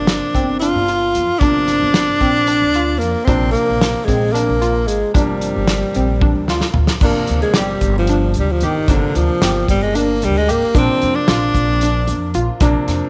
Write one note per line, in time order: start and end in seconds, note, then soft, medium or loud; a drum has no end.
0.00 0.19 G1 medium
0.00 1.38 C3 medium
0.00 1.38 F3 soft
0.00 1.38 A#3 soft
0.00 0.58 D4 medium
0.00 1.38 D4 medium
0.07 snare loud
0.07 closed hi-hat medium
0.35 0.72 G1 medium
0.35 0.53 C4 medium
0.35 kick medium
0.35 closed hi-hat medium
0.59 0.80 D4 medium
0.59 1.41 F4 medium
0.59 closed hi-hat medium
0.76 1.17 G1 medium
0.88 1.25 F4 medium
0.88 closed hi-hat medium
1.15 1.28 F2 medium
1.15 closed hi-hat medium
1.39 1.78 G1 medium
1.39 3.25 C3 medium
1.39 3.25 F3 medium
1.39 3.25 A#3 soft
1.39 3.00 D4 medium
1.39 3.25 D4 medium
1.39 1.79 D4 medium
1.39 kick medium
1.39 closed hi-hat medium
1.68 snare soft
1.68 closed hi-hat medium
1.82 2.07 G1 medium
1.94 snare loud
1.94 closed hi-hat medium
2.20 2.59 A#1 medium
2.20 2.40 C4 medium
2.20 kick medium
2.20 closed hi-hat soft
2.47 2.66 D4 medium
2.47 closed hi-hat medium
2.62 3.01 D2 medium
2.74 3.12 F4 medium
2.74 closed hi-hat soft
2.99 3.14 F2 medium
2.99 3.26 A#3 medium
2.99 closed hi-hat medium
3.25 3.53 A#1 medium
3.25 5.11 C3 medium
3.25 5.11 F3 soft
3.25 5.11 A#3 soft
3.25 3.51 C4 medium
3.25 3.65 D4 medium
3.25 5.12 D4 medium
3.25 kick medium
3.25 closed hi-hat medium
3.52 4.06 A#3 medium
3.52 closed hi-hat medium
3.69 3.94 A#1 medium
3.81 snare loud
3.81 closed hi-hat medium
4.05 4.46 A#1 medium
4.05 4.34 G#3 medium
4.05 4.27 C4 medium
4.05 kick medium
4.05 closed hi-hat medium
4.33 4.89 A#3 medium
4.33 4.53 D4 medium
4.33 closed hi-hat medium
4.49 4.89 A#1 medium
4.62 4.98 F4 medium
4.62 closed hi-hat medium
4.87 5.01 G#1 medium
4.87 5.14 G#3 medium
4.87 closed hi-hat medium
5.14 5.52 G1 medium
5.14 6.99 C3 soft
5.14 6.99 F3 soft
5.14 6.71 G3 medium
5.14 6.99 A#3 soft
5.14 5.51 D4 medium
5.14 6.99 D4 medium
5.14 kick medium
5.14 closed hi-hat medium
5.41 closed hi-hat medium
5.56 5.81 G1 medium
5.68 snare loud
5.68 closed hi-hat medium
5.94 6.33 A#1 medium
5.94 6.14 C4 medium
5.94 closed hi-hat soft
6.21 6.40 D4 medium
6.21 kick loud
6.21 high tom medium
6.36 6.60 D2 medium
6.48 6.86 F4 medium
6.48 snare medium
6.61 snare medium
6.74 6.89 D2 medium
6.74 floor tom medium
6.87 snare medium
7.01 7.14 G1 medium
7.01 8.86 C3 medium
7.01 8.86 F3 soft
7.01 8.86 A#3 soft
7.01 7.40 A#3 medium
7.01 7.39 D4 medium
7.01 8.86 D4 medium
7.01 kick loud
7.01 crash medium
7.01 shaker medium
7.27 7.42 D2 medium
7.27 closed hi-hat medium
7.27 shaker soft
7.42 7.59 G#3 medium
7.54 7.80 G1 medium
7.54 7.96 G3 medium
7.54 7.92 G4 medium
7.54 snare loud
7.54 closed hi-hat medium
7.81 8.37 G1 medium
7.81 kick medium
7.81 closed hi-hat medium
7.81 shaker soft
7.99 8.34 F3 medium
8.07 8.46 D4 medium
8.07 closed hi-hat medium
8.34 8.60 D2 medium
8.34 closed hi-hat medium
8.34 shaker soft
8.39 8.53 G3 medium
8.52 8.66 F3 medium
8.60 8.75 G1 medium
8.60 8.93 D#3 medium
8.60 8.81 G4 medium
8.60 closed hi-hat medium
8.88 9.01 G1 loud
8.88 10.72 C3 medium
8.88 9.18 D3 medium
8.88 10.72 F3 soft
8.88 10.72 A#3 medium
8.88 9.26 D4 medium
8.88 10.72 D4 medium
8.88 kick medium
8.88 closed hi-hat medium
8.88 shaker soft
9.15 9.28 D2 medium
9.15 9.69 F3 medium
9.15 closed hi-hat medium
9.15 shaker soft
9.42 9.67 G1 medium
9.42 9.79 G4 medium
9.42 snare loud
9.42 closed hi-hat medium
9.68 10.24 G1 medium
9.68 9.84 G3 medium
9.68 kick medium
9.68 closed hi-hat medium
9.68 shaker soft
9.83 9.97 G#3 medium
9.95 10.26 A#3 medium
9.95 10.32 D4 medium
9.95 closed hi-hat medium
10.22 10.47 D2 medium
10.22 10.39 G3 medium
10.22 closed hi-hat medium
10.22 shaker soft
10.38 10.53 G#3 medium
10.49 10.61 G#1 medium
10.49 10.80 A#3 medium
10.49 10.67 G4 medium
10.49 closed hi-hat medium
10.74 10.87 A#1 loud
10.74 12.58 C3 medium
10.74 12.58 F3 medium
10.74 12.58 A#3 medium
10.74 11.17 C4 medium
10.74 12.58 D4 medium
10.74 11.12 D4 medium
10.74 kick loud
10.74 closed hi-hat medium
10.74 shaker soft
11.02 11.15 F2 medium
11.02 closed hi-hat medium
11.02 shaker soft
11.15 12.49 D4 medium
11.28 11.53 A#1 medium
11.28 11.66 F4 medium
11.28 snare loud
11.28 closed hi-hat medium
11.54 12.09 A#1 medium
11.54 kick medium
11.54 closed hi-hat medium
11.54 shaker soft
11.81 12.19 D4 medium
11.81 closed hi-hat medium
12.07 12.33 F2 medium
12.07 closed hi-hat medium
12.07 shaker soft
12.34 12.47 A#1 medium
12.34 12.53 F4 medium
12.34 closed hi-hat medium
12.60 12.74 A#1 loud
12.60 13.09 C3 medium
12.60 13.09 F3 medium
12.60 13.09 A#3 medium
12.60 13.09 D4 medium
12.60 12.99 D4 medium
12.60 kick loud
12.60 closed hi-hat medium
12.60 shaker medium
12.88 13.01 F2 medium
12.88 snare soft
12.88 closed hi-hat medium
12.88 shaker soft